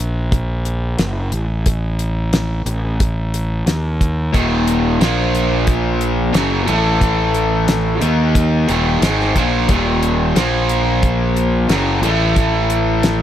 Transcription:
0.00 0.95 A#1 medium
0.32 kick loud
0.32 closed hi-hat medium
0.65 closed hi-hat medium
0.99 1.30 F#1 medium
0.99 snare loud
0.99 closed hi-hat medium
1.32 2.62 A1 medium
1.32 closed hi-hat medium
1.66 kick loud
1.66 closed hi-hat medium
1.99 closed hi-hat medium
2.33 snare loud
2.33 closed hi-hat medium
2.66 3.62 A1 medium
2.66 closed hi-hat medium
3.00 kick loud
3.00 closed hi-hat medium
3.34 closed hi-hat medium
3.66 4.30 D#2 medium
3.66 snare loud
3.66 closed hi-hat medium
4.01 kick medium
4.01 closed hi-hat medium
4.33 4.97 D#1 medium
4.33 4.99 D#2 medium
4.33 4.99 A#2 loud
4.33 5.00 D#3 medium
4.33 kick loud
4.33 closed hi-hat medium
4.67 closed hi-hat medium
5.00 6.31 A#1 medium
5.00 6.33 A#2 medium
5.00 6.34 F3 medium
5.00 6.34 A#3 medium
5.00 snare loud
5.00 closed hi-hat medium
5.35 closed hi-hat medium
5.67 kick loud
5.67 closed hi-hat medium
6.01 closed hi-hat medium
6.33 6.66 F#1 medium
6.33 6.66 F#2 medium
6.33 6.66 C#3 medium
6.33 6.67 F#3 medium
6.33 snare loud
6.33 closed hi-hat medium
6.66 7.98 A1 medium
6.66 8.00 A2 medium
6.66 8.01 E3 medium
6.66 8.01 A3 loud
6.66 closed hi-hat medium
7.01 kick medium
7.01 closed hi-hat medium
7.34 closed hi-hat medium
7.68 snare loud
7.68 closed hi-hat medium
8.01 8.65 D#2 medium
8.01 8.67 D#3 medium
8.01 8.68 A#3 medium
8.01 8.68 D#4 medium
8.01 closed hi-hat medium
8.35 kick loud
8.35 closed hi-hat medium
8.68 9.00 D#1 medium
8.68 9.01 D#2 medium
8.68 9.01 A#2 medium
8.68 9.01 D#3 medium
8.68 closed hi-hat medium
9.02 9.33 G#1 medium
9.02 9.34 G#2 medium
9.02 9.35 D#3 medium
9.02 9.35 G#3 medium
9.02 snare loud
9.02 closed hi-hat medium
9.20 snare soft
9.34 9.67 A#1 medium
9.34 9.68 A#2 medium
9.34 9.68 F3 medium
9.34 9.68 A#3 loud
9.34 kick medium
9.34 closed hi-hat medium
9.68 10.32 D#1 medium
9.68 10.34 D#2 medium
9.68 10.34 A#2 medium
9.68 10.35 D#3 medium
9.68 kick medium
9.68 closed hi-hat medium
10.03 closed hi-hat medium
10.35 11.66 A#1 medium
10.35 11.68 A#2 medium
10.35 11.68 F3 medium
10.35 11.69 A#3 loud
10.35 snare loud
10.35 closed hi-hat medium
10.69 closed hi-hat medium
11.03 kick medium
11.03 closed hi-hat medium
11.37 closed hi-hat medium
11.69 12.01 F#1 loud
11.69 12.01 F#2 medium
11.69 12.02 C#3 medium
11.69 12.02 F#3 loud
11.69 snare loud
11.69 closed hi-hat medium
12.02 13.22 A1 medium
12.02 13.22 A2 medium
12.02 13.22 E3 medium
12.02 13.22 A3 loud
12.02 closed hi-hat medium
12.36 kick medium
12.36 closed hi-hat medium
12.70 closed hi-hat medium
13.03 snare loud
13.03 closed hi-hat medium

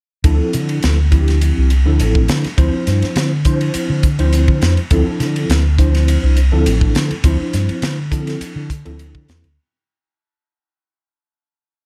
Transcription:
0.24 0.38 D2 medium
0.24 0.97 F3 medium
0.24 0.97 C4 medium
0.24 0.97 D4 medium
0.24 0.97 E4 medium
0.24 0.97 A4 medium
0.24 kick medium
0.24 hi-hat pedal medium
0.24 ride medium
0.41 muted fingered electric bass stroke soft
0.53 0.80 D3 medium
0.53 hi-hat pedal medium
0.53 ride medium
0.69 ride medium
0.83 1.50 D2 medium
0.83 snare loud
0.83 hi-hat pedal medium
0.83 ride medium
1.11 1.71 F3 medium
1.11 1.71 C4 medium
1.11 1.71 D4 medium
1.11 1.71 E4 medium
1.11 1.72 G4 medium
1.11 kick medium
1.11 hi-hat pedal medium
1.11 ride medium
1.28 snare soft
1.28 ride medium
1.41 hi-hat pedal medium
1.41 ride medium
1.58 1.84 C2 medium
1.70 hi-hat pedal medium
1.70 ride medium
1.85 1.99 D2 medium
1.85 2.45 F3 medium
1.85 2.45 C4 medium
1.85 2.45 D4 medium
1.85 2.45 E4 medium
1.85 2.45 A4 medium
2.00 2.26 A1 medium
2.00 hi-hat pedal medium
2.00 ride medium
2.15 kick medium
2.28 2.43 D3 medium
2.28 snare loud
2.28 hi-hat pedal medium
2.28 ride medium
2.44 muted fingered electric bass stroke soft
2.44 snare soft
2.44 ride soft
2.57 2.72 D2 medium
2.57 3.30 F3 medium
2.57 3.30 C4 medium
2.57 3.30 D4 medium
2.57 3.30 E4 medium
2.57 3.30 C5 medium
2.57 kick medium
2.57 hi-hat pedal medium
2.57 ride medium
2.74 muted fingered electric bass stroke soft
2.87 3.01 G2 medium
2.87 snare soft
2.87 hi-hat pedal medium
2.87 ride medium
3.02 muted fingered electric bass stroke soft
3.02 snare soft
3.02 ride medium
3.16 3.68 D3 medium
3.16 snare medium
3.16 hi-hat pedal medium
3.16 ride medium
3.45 4.05 F3 medium
3.45 4.05 C4 medium
3.45 4.05 D4 medium
3.45 4.05 E4 medium
3.45 4.05 C5 medium
3.45 kick medium
3.45 hi-hat pedal medium
3.45 ride medium
3.61 ride medium
3.74 muted fingered electric bass stroke soft
3.74 hi-hat pedal medium
3.74 ride medium
3.90 4.16 D3 medium
4.03 kick medium
4.03 hi-hat pedal medium
4.03 ride medium
4.18 4.45 D2 medium
4.18 4.78 F3 medium
4.18 4.78 C4 medium
4.18 4.79 D4 medium
4.18 4.79 E4 medium
4.18 4.79 C5 medium
4.18 ride medium
4.33 hi-hat pedal medium
4.33 ride medium
4.48 4.61 D3 medium
4.48 kick medium
4.61 4.76 F2 medium
4.61 snare loud
4.61 hi-hat pedal medium
4.61 ride soft
4.77 ride soft
4.91 5.05 D2 medium
4.91 5.63 F3 medium
4.91 5.64 C4 medium
4.91 5.64 D4 medium
4.91 5.64 E4 medium
4.91 5.63 A4 medium
4.91 kick loud
4.91 hi-hat pedal medium
4.91 ride medium
5.07 muted fingered electric bass stroke soft
5.20 5.46 D3 medium
5.20 snare soft
5.20 hi-hat pedal medium
5.20 ride medium
5.36 ride medium
5.49 6.16 D2 medium
5.49 snare loud
5.49 hi-hat pedal medium
5.49 ride medium
5.78 6.38 F3 medium
5.78 6.38 C4 medium
5.78 6.38 D4 medium
5.78 6.38 E4 medium
5.78 6.38 C5 medium
5.78 kick medium
5.78 hi-hat pedal medium
5.78 ride medium
5.95 snare soft
5.95 ride medium
6.08 hi-hat pedal medium
6.08 ride medium
6.23 6.49 C2 medium
6.37 hi-hat pedal medium
6.37 ride medium
6.52 6.65 D2 medium
6.52 7.12 F3 medium
6.52 7.12 C4 medium
6.52 7.12 D4 medium
6.52 7.12 E4 medium
6.52 7.12 A4 medium
6.66 6.92 A1 medium
6.66 hi-hat pedal medium
6.66 ride medium
6.81 kick medium
6.95 7.09 D3 medium
6.95 snare medium
6.95 hi-hat pedal medium
6.95 ride medium
7.11 muted fingered electric bass stroke soft
7.11 ride medium
7.24 7.38 D2 medium
7.24 7.97 F3 medium
7.24 7.97 C4 medium
7.24 7.97 D4 medium
7.24 7.97 E4 medium
7.24 7.97 C5 medium
7.24 kick medium
7.24 hi-hat pedal medium
7.24 ride medium
7.40 muted fingered electric bass stroke soft
7.53 7.68 G2 medium
7.53 snare soft
7.53 hi-hat pedal medium
7.53 ride medium
7.69 muted fingered electric bass stroke soft
7.69 ride medium
7.82 8.35 D3 medium
7.82 snare medium
7.82 hi-hat pedal medium
7.82 ride medium
8.11 8.71 F3 medium
8.11 8.71 C4 medium
8.11 8.71 D4 medium
8.11 8.71 E4 medium
8.11 8.71 A4 medium
8.11 kick medium
8.11 hi-hat pedal medium
8.11 ride medium
8.27 snare soft
8.27 ride medium
8.41 muted fingered electric bass stroke soft
8.41 hi-hat pedal medium
8.41 ride medium
8.56 8.82 D3 medium
8.70 kick medium
8.70 hi-hat pedal medium
8.70 ride medium
8.85 9.12 D2 medium
8.85 9.45 F3 medium
8.85 9.45 C4 medium
8.85 9.45 D4 medium
8.85 9.45 E4 medium
8.85 9.45 A4 medium
8.85 ride medium
8.99 hi-hat pedal medium
8.99 ride medium
9.15 9.27 D3 medium
9.15 kick medium
9.28 9.42 E2 medium
9.28 snare medium
9.28 hi-hat pedal medium
9.28 ride soft
9.44 9.56 D2 medium
9.44 ride soft

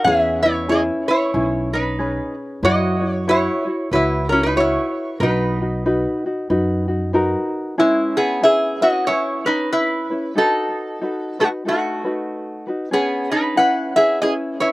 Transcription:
0.04 0.89 E2 medium
0.04 0.44 C#4 medium
0.04 0.44 E4 medium
0.04 0.43 G#4 medium
0.04 0.42 G#4 medium
0.04 0.42 B4 medium
0.04 0.44 E5 medium
0.43 0.68 C#4 soft
0.43 0.69 E4 soft
0.43 0.69 E4 medium
0.43 0.69 B4 medium
0.43 0.70 C#5 medium
0.68 1.08 C#4 medium
0.68 1.08 E4 medium
0.68 1.07 G#4 medium
0.68 0.82 G#4 medium
0.68 1.07 B4 medium
0.68 0.80 D#5 medium
1.08 1.33 C#4 soft
1.08 1.34 E4 soft
1.08 1.70 E4 medium
1.08 1.34 B4 soft
1.08 1.74 C#5 medium
1.34 2.18 B1 medium
1.34 1.73 C#4 medium
1.34 1.73 E4 medium
1.34 1.72 G#4 medium
1.34 1.71 B4 medium
1.72 1.98 C#4 soft
1.72 2.34 D#4 medium
1.72 1.98 B4 medium
1.72 2.33 B4 medium
1.99 2.64 C#4 medium
1.99 2.63 G#4 medium
1.99 2.63 B4 medium
2.63 3.47 F#2 medium
2.63 3.02 E4 medium
2.63 3.01 F#4 medium
2.63 3.25 F#4 medium
2.63 3.00 B4 medium
2.63 2.99 C#5 medium
2.63 3.15 D#5 loud
3.01 3.27 E4 soft
3.01 3.26 F#4 soft
3.01 3.27 C#5 medium
3.15 3.28 C#5 loud
3.27 3.66 E4 medium
3.27 3.89 E4 medium
3.27 3.65 F#4 medium
3.27 3.65 B4 medium
3.27 3.64 C#5 medium
3.27 3.89 C#5 loud
3.65 3.91 E4 soft
3.65 3.92 F#4 soft
3.65 3.91 C#5 soft
3.91 4.75 C#2 medium
3.91 4.31 E4 medium
3.91 4.29 E4 medium
3.91 4.30 F#4 medium
3.91 4.29 B4 medium
3.91 4.29 C#5 medium
4.29 4.43 C#4 medium
4.29 4.55 E4 soft
4.29 4.56 F#4 soft
4.29 4.43 A#4 medium
4.29 4.56 C#5 medium
4.43 4.57 D#4 medium
4.43 4.57 B4 medium
4.56 5.21 E4 medium
4.56 5.22 F#4 medium
4.56 5.21 B4 medium
4.56 5.20 C#5 medium
4.56 5.21 C#5 medium
4.60 5.19 E4 medium
5.20 6.04 B1 medium
5.20 5.60 D#4 medium
5.20 7.11 D#4 medium
5.20 5.60 F#4 medium
5.20 7.10 B4 medium
5.20 5.59 B4 medium
5.61 5.85 D#4 soft
5.61 5.85 F#4 soft
5.86 6.24 D#4 medium
5.86 6.24 F#4 medium
5.86 6.24 B4 medium
6.26 6.49 D#4 soft
6.26 6.50 F#4 soft
6.50 7.34 F#2 medium
6.50 6.88 D#4 medium
6.50 6.87 F#4 medium
6.50 6.88 B4 medium
6.88 7.13 D#4 soft
6.88 7.13 F#4 soft
7.13 7.77 D#4 medium
7.13 7.78 F#4 medium
7.13 7.78 A#4 medium
7.13 7.79 B4 medium
7.78 8.15 G#3 medium
7.78 8.41 C#4 medium
7.78 8.42 E4 medium
7.78 8.19 E4 medium
7.78 8.40 G#4 medium
7.78 8.43 B4 medium
8.17 8.41 B3 medium
8.17 8.41 G#4 medium
8.41 8.81 C#4 medium
8.41 8.81 E4 medium
8.41 8.81 G#4 medium
8.41 8.80 G#4 medium
8.41 8.80 B4 medium
8.41 8.82 E5 medium
8.81 9.07 C#4 soft
8.81 9.08 E4 soft
8.81 9.06 F#4 medium
8.81 9.07 B4 soft
8.81 9.08 D#5 medium
9.07 9.46 C#4 medium
9.07 9.43 E4 medium
9.07 9.47 E4 medium
9.07 9.44 G#4 medium
9.07 9.44 B4 medium
9.07 9.47 C#5 loud
9.45 10.11 C#4 soft
9.45 9.71 D#4 medium
9.45 10.10 B4 medium
9.45 9.70 B4 medium
9.72 10.33 E4 medium
9.72 10.38 B4 medium
10.10 10.36 C#4 soft
10.10 10.36 E4 soft
10.10 10.35 B4 soft
10.35 11.00 D#4 medium
10.35 11.36 D#4 medium
10.35 11.01 F#4 medium
10.35 11.00 A4 medium
10.35 11.41 A4 medium
10.35 11.03 B4 medium
11.01 11.39 D#4 medium
11.01 11.39 F#4 medium
11.01 11.39 A4 medium
11.01 11.38 B4 medium
11.39 11.47 A3 medium
11.39 11.65 D#4 soft
11.39 11.65 F#4 soft
11.39 11.48 F#4 medium
11.39 11.65 B4 soft
11.65 12.65 A3 medium
11.65 12.04 D#4 medium
11.65 12.04 F#4 medium
11.65 12.65 F#4 medium
11.65 12.03 A4 medium
11.65 12.03 B4 medium
12.04 12.68 D#4 soft
12.04 12.67 F#4 soft
12.04 12.67 B4 soft
12.67 12.92 D#4 soft
12.67 12.91 F#4 soft
12.67 12.92 B4 medium
12.91 13.29 B3 medium
12.91 13.57 C#4 medium
12.91 13.55 G#4 medium
12.91 13.31 G#4 medium
12.91 13.55 B4 medium
13.32 13.56 D#4 medium
13.32 13.58 B4 medium
13.56 13.95 C#4 medium
13.56 13.95 E4 medium
13.56 13.95 G#4 medium
13.56 13.94 B4 medium
13.56 13.96 F#5 medium
13.96 14.21 C#4 soft
13.96 14.22 E4 soft
13.96 14.20 G#4 medium
13.96 14.21 B4 soft
13.96 14.21 E5 loud
14.21 14.60 C#4 medium
14.21 14.60 E4 medium
14.21 14.60 G#4 medium
14.21 14.33 G#4 medium
14.21 14.59 B4 medium
14.21 14.32 D#5 medium
14.60 14.72 C#4 soft
14.60 14.68 E4 medium
14.60 14.72 E4 soft
14.60 14.72 B4 medium
14.60 14.67 C#5 medium

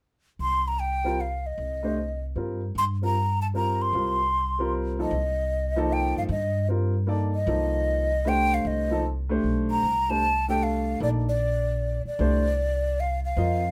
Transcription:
0.39 1.53 C2 medium
0.39 0.69 C6 medium
0.68 0.82 A#5 medium
0.80 1.22 G5 medium
1.04 1.16 G3 medium
1.04 1.17 C4 medium
1.04 1.17 F4 medium
1.04 1.17 A#4 medium
1.21 1.48 F5 medium
1.46 2.24 D#5 medium
1.58 2.32 C2 medium
1.83 1.95 A3 medium
1.83 1.96 D4 soft
1.83 1.96 G4 soft
1.83 1.96 C5 medium
2.36 2.72 G2 medium
2.36 2.59 G3 soft
2.36 2.60 C4 soft
2.36 2.60 F4 soft
2.36 2.60 A#4 medium
2.75 3.89 G2 medium
2.75 2.84 C6 loud
3.02 3.14 G3 soft
3.02 3.14 C4 soft
3.02 3.14 F4 soft
3.02 3.14 A#4 medium
3.02 3.40 A#5 medium
3.42 3.48 A5 medium
3.54 3.92 G3 soft
3.54 3.92 C4 soft
3.54 3.93 F4 soft
3.54 3.94 A#4 medium
3.54 3.83 A#5 medium
3.82 4.73 C6 medium
3.93 5.07 C2 medium
3.93 4.17 G3 soft
3.93 4.17 C4 soft
3.93 4.17 F4 soft
3.93 4.18 A#4 medium
4.59 4.95 G3 medium
4.59 4.96 C4 medium
4.59 4.96 F4 medium
4.59 4.96 A#4 medium
4.99 5.10 F3 medium
4.99 5.11 A#3 medium
4.99 5.11 D#4 medium
4.99 5.11 A4 medium
4.99 5.94 D#5 medium
5.11 6.12 C2 medium
5.76 6.26 F3 medium
5.76 6.27 A#3 medium
5.76 6.27 D#4 medium
5.76 6.27 A4 medium
5.93 6.17 G5 medium
6.16 6.28 G2 medium
6.16 6.23 F5 medium
6.29 7.43 G2 medium
6.29 6.67 D#5 medium
6.68 6.92 G3 soft
6.68 6.92 C4 soft
6.68 6.93 F4 soft
6.68 6.93 A#4 medium
7.07 7.31 A#3 medium
7.07 7.31 D#4 medium
7.07 7.32 A4 medium
7.07 7.32 D5 medium
7.35 8.30 D#5 medium
7.46 8.61 C2 medium
7.46 8.07 F3 soft
7.46 8.07 A#3 medium
7.46 8.08 D#4 medium
7.46 8.08 A4 medium
8.25 8.85 A3 medium
8.25 8.86 D4 medium
8.25 8.86 G4 medium
8.25 8.87 C5 medium
8.25 8.56 G5 loud
8.54 8.69 F5 medium
8.65 9.39 C2 medium
8.65 9.05 D#5 medium
8.90 9.03 F3 medium
8.90 9.03 A#3 medium
8.90 9.03 D#4 medium
8.90 9.04 A4 medium
9.29 9.80 A3 medium
9.29 9.80 D4 medium
9.29 9.80 G4 medium
9.29 9.81 C5 medium
9.44 9.80 B1 medium
9.71 10.12 A#5 medium
9.83 10.97 C2 medium
10.09 10.21 A3 medium
10.09 10.21 D4 medium
10.09 10.21 G4 medium
10.09 10.22 C5 medium
10.09 10.49 A5 loud
10.48 10.98 A3 medium
10.48 10.98 D4 medium
10.48 10.99 G4 medium
10.48 10.99 A4 medium
10.48 10.65 G5 medium
10.63 11.02 F5 medium
11.00 12.01 A#1 medium
11.00 11.24 A#3 medium
11.00 11.24 D#4 medium
11.00 11.25 A4 soft
11.00 11.25 D5 medium
11.00 11.09 D5 medium
11.29 12.02 D5 medium
12.05 13.02 D5 medium
12.05 muted upright bass stroke soft
12.19 13.33 C2 medium
12.19 12.42 A3 medium
12.19 12.42 D4 medium
12.19 12.43 G4 medium
12.19 12.43 C5 medium
13.00 13.24 F5 medium
13.24 13.71 F5 medium
13.37 13.71 F2 medium
13.37 13.60 C4 medium
13.37 13.60 F4 medium
13.37 13.60 A#4 soft
13.37 13.61 D#5 medium

